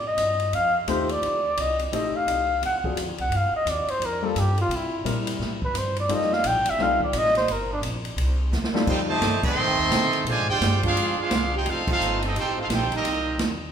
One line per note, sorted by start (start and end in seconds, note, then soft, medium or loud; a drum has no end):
0.00 0.16 A2 medium
0.08 0.56 D#5 loud
0.17 0.52 G2 loud
0.17 hi-hat pedal medium
0.17 ride medium
0.40 ride medium
0.53 0.87 F2 loud
0.53 0.76 F5 loud
0.53 ride medium
0.88 1.22 D#2 medium
0.88 1.07 A3 medium
0.88 1.08 C4 medium
0.88 1.07 D#4 medium
0.88 1.08 F4 medium
0.88 1.08 G4 medium
0.88 1.13 C5 loud
0.88 hi-hat pedal medium
0.88 ride medium
1.09 1.62 D5 loud
1.09 ride medium
1.23 1.57 D2 medium
1.23 ride medium
1.57 1.91 C2 loud
1.57 1.81 D#5 loud
1.57 hi-hat pedal medium
1.57 ride medium
1.79 ride medium
1.92 2.12 A1 loud
1.92 2.45 A3 medium
1.92 2.45 C4 medium
1.92 2.45 D#4 medium
1.92 2.45 G4 medium
1.92 2.45 A4 medium
1.92 2.18 D#5 medium
1.92 ride medium
2.14 2.63 F5 medium
2.14 muted upright bass stroke soft
2.26 2.61 C2 medium
2.26 hi-hat pedal medium
2.26 ride medium
2.62 2.95 D2 medium
2.62 2.78 F#5 loud
2.62 ride medium
2.84 2.96 F#3 medium
2.84 2.96 C4 medium
2.84 2.96 D4 medium
2.84 2.97 F4 medium
2.84 2.96 G#4 medium
2.84 kick medium
2.96 3.08 F2 loud
2.96 hi-hat pedal medium
2.96 ride medium
3.08 3.18 D2 medium
3.18 3.29 C2 medium
3.18 3.38 F#5 loud
3.18 ride soft
3.30 3.51 G2 loud
3.30 ride medium
3.37 3.55 F5 medium
3.52 muted upright bass stroke soft
3.56 3.71 D#5 loud
3.65 3.86 D#2 medium
3.65 hi-hat pedal medium
3.65 ride medium
3.70 3.92 D5 medium
3.86 4.07 C5 loud
3.86 muted upright bass stroke soft
3.86 ride medium
4.00 4.34 F2 loud
4.00 ride medium
4.06 4.27 A#4 loud
4.22 4.35 G3 medium
4.22 4.35 A#3 medium
4.22 4.35 D4 medium
4.22 4.35 F4 medium
4.22 4.35 A4 medium
4.22 4.41 A4 medium
4.36 4.68 G2 loud
4.36 4.59 G4 loud
4.36 hi-hat pedal medium
4.36 ride medium
4.58 4.77 F4 medium
4.58 ride medium
4.69 5.04 C3 medium
4.69 ride medium
4.76 5.08 E4 medium
5.05 5.39 A#2 medium
5.05 5.57 G3 medium
5.05 5.57 C4 medium
5.05 5.57 D4 medium
5.05 5.57 E4 medium
5.05 5.58 A#4 medium
5.05 hi-hat pedal medium
5.05 ride medium
5.27 ride medium
5.39 5.73 A2 loud
5.39 snare soft
5.62 5.79 B4 loud
5.62 kick medium
5.74 6.08 G2 loud
5.74 hi-hat pedal medium
5.74 ride medium
5.78 5.98 C5 loud
5.96 6.15 D5 loud
5.96 ride medium
6.09 6.43 F2 medium
6.09 6.29 G3 medium
6.09 6.29 C4 medium
6.09 6.29 D#4 medium
6.09 6.29 F4 medium
6.09 6.29 A4 medium
6.09 ride medium
6.13 6.35 D#5 medium
6.21 snare soft
6.33 6.48 F5 loud
6.33 snare medium
6.44 6.55 A#1 loud
6.44 6.72 G5 loud
6.44 hi-hat pedal medium
6.44 ride medium
6.55 6.66 A1 medium
6.65 6.78 F1 medium
6.65 ride medium
6.70 6.84 E5 loud
6.78 7.12 C2 medium
6.78 6.99 G3 medium
6.78 6.99 C4 medium
6.78 6.99 D#4 medium
6.78 6.99 F4 medium
6.78 6.99 A4 medium
6.78 snare soft
6.82 7.02 F5 loud
7.00 7.19 D5 loud
7.00 kick medium
7.13 7.47 A1 loud
7.13 hi-hat pedal medium
7.13 ride medium
7.17 7.37 D#5 loud
7.25 snare soft
7.35 7.54 C5 loud
7.35 snare medium
7.35 ride medium
7.47 7.81 G1 loud
7.47 ride medium
7.52 7.72 A#4 medium
7.73 7.80 D4 medium
7.81 8.16 A#1 medium
7.81 hi-hat pedal medium
7.81 ride medium
8.05 ride medium
8.16 8.51 C2 medium
8.16 ride medium
8.52 8.86 D2 loud
8.52 snare medium
8.52 hi-hat pedal medium
8.64 snare medium
8.74 9.19 G3 medium
8.74 9.20 C4 medium
8.74 9.20 D#4 medium
8.74 9.20 F4 medium
8.74 9.20 A4 medium
8.74 snare loud
8.87 9.20 F2 medium
8.87 8.97 C4 medium
8.87 8.97 D#4 medium
8.87 8.98 D#4 medium
8.87 8.97 G4 medium
8.87 8.98 A4 medium
8.87 8.98 C5 medium
8.87 8.98 G5 medium
8.87 kick medium
8.87 crash loud
9.08 9.41 C3 medium
9.08 9.41 D#3 medium
9.08 9.41 A3 loud
9.08 9.42 G4 medium
9.08 9.42 C5 medium
9.08 9.42 D#5 loud
9.08 9.42 A5 loud
9.21 9.42 G2 medium
9.21 snare medium
9.21 hi-hat pedal medium
9.21 ride medium
9.43 10.23 D#3 loud
9.43 10.23 A3 loud
9.43 10.22 C4 loud
9.43 10.23 A4 loud
9.43 10.23 D#5 loud
9.43 10.23 G5 loud
9.43 10.23 C6 loud
9.43 muted upright bass stroke soft
9.43 kick loud
9.43 crash medium
9.57 9.70 A2 loud
9.68 9.78 F2 medium
9.79 9.89 D#2 medium
9.90 10.24 C3 loud
9.90 snare medium
9.90 hi-hat pedal medium
9.90 ride medium
10.13 ride soft
10.25 10.37 A#2 loud
10.25 10.46 D3 medium
10.25 10.46 F3 medium
10.25 10.46 G#3 loud
10.25 10.47 C5 loud
10.25 10.48 D5 medium
10.25 ride medium
10.29 10.48 F4 medium
10.29 10.48 G#5 loud
10.37 10.48 G#2 medium
10.48 10.60 F2 medium
10.48 10.81 G#3 medium
10.48 10.80 D4 medium
10.48 10.82 F4 loud
10.48 10.81 G4 medium
10.48 10.81 C5 medium
10.48 10.81 D5 medium
10.48 10.81 G5 loud
10.61 10.95 G2 loud
10.61 snare medium
10.61 hi-hat pedal medium
10.61 ride medium
10.83 11.15 G#3 medium
10.83 11.15 D4 loud
10.83 11.16 D4 medium
10.83 11.15 F4 medium
10.83 11.16 G#4 loud
10.83 11.16 C5 medium
10.83 11.16 F5 medium
10.83 kick medium
10.83 ride medium
10.95 11.16 F2 loud
10.95 ride medium
11.16 11.50 G#3 medium
11.16 11.50 D4 medium
11.16 11.50 F4 medium
11.16 muted upright bass stroke soft
11.21 11.52 D4 medium
11.21 11.51 G#4 medium
11.21 11.52 C5 medium
11.21 11.51 F5 loud
11.30 11.64 C2 loud
11.30 snare medium
11.30 hi-hat pedal medium
11.30 ride medium
11.53 11.66 D#4 medium
11.53 11.65 G4 medium
11.53 11.66 G#4 medium
11.53 11.66 C5 medium
11.53 11.66 G5 loud
11.66 11.99 F1 loud
11.66 11.86 A3 medium
11.66 11.87 C4 medium
11.66 11.89 D#4 medium
11.66 11.87 F4 medium
11.66 11.89 A4 medium
11.66 11.89 C5 medium
11.66 11.89 F5 loud
11.66 ride medium
11.87 12.19 A3 medium
11.87 12.19 C4 medium
11.87 12.21 D#4 medium
11.87 12.20 F4 medium
11.87 12.21 A4 medium
11.87 12.21 C5 medium
11.87 12.21 F5 loud
11.87 kick loud
11.87 crash medium
12.00 12.33 G1 medium
12.00 hi-hat pedal medium
12.20 12.34 A3 medium
12.20 12.34 C4 medium
12.20 12.34 D#4 medium
12.20 ride medium
12.25 12.36 C4 medium
12.25 12.37 G4 medium
12.25 12.37 A4 medium
12.25 12.37 D#5 medium
12.34 12.68 A1 medium
12.34 12.56 C4 medium
12.34 12.56 D#4 medium
12.34 12.55 G4 medium
12.34 ride medium
12.39 12.57 D#4 medium
12.39 12.57 A4 medium
12.39 12.57 C5 medium
12.39 12.58 G5 loud
12.57 12.63 A3 medium
12.57 12.63 C4 medium
12.57 12.63 F4 medium
12.62 12.66 D#4 medium
12.62 12.67 A4 medium
12.62 12.66 C5 medium
12.62 12.67 F5 medium
12.69 12.89 A#1 loud
12.69 12.90 C4 medium
12.69 12.90 D#4 medium
12.69 12.90 G4 medium
12.69 snare medium
12.69 hi-hat pedal medium
12.69 ride medium
12.74 12.92 D#4 medium
12.74 12.92 A4 medium
12.74 12.92 C5 medium
12.74 12.92 G5 loud
12.91 13.36 G3 medium
12.91 13.36 A#3 medium
12.91 13.36 D#4 medium
12.91 muted upright bass stroke soft
12.91 ride medium
12.96 13.38 C4 medium
12.96 13.38 G4 medium
12.96 13.38 A#4 medium
12.96 13.38 D#5 medium
13.04 13.37 C2 medium
13.04 ride medium
13.38 13.72 D#2 medium
13.38 snare medium
13.38 hi-hat pedal medium
13.38 ride medium